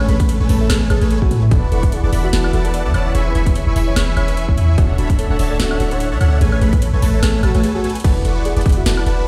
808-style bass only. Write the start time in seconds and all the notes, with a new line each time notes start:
0.09 A1
0.40 A1
0.49 A1
0.70 A1
0.90 A1
1.01 A1
1.22 A1
1.31 A2
1.51 E1
1.72 E1
2.04 E1
2.13 E1
2.33 E1
2.54 E1
2.85 E2
2.94 E1
3.15 E1
3.35 E1
3.67 E1
3.76 E1
3.96 E1
4.17 E1
4.49 E2
4.58 E2
4.78 D1
4.98 D1
5.30 D1
5.39 D1
5.60 D1
5.80 D1
6.12 D2
6.21 D2
6.41 A1
6.62 A1
6.93 A1
7.02 A1
7.23 A1
7.43 A1
7.55 A1
8.04 E1
8.25 E1
8.57 E1
8.66 E1
8.86 E1
9.06 E1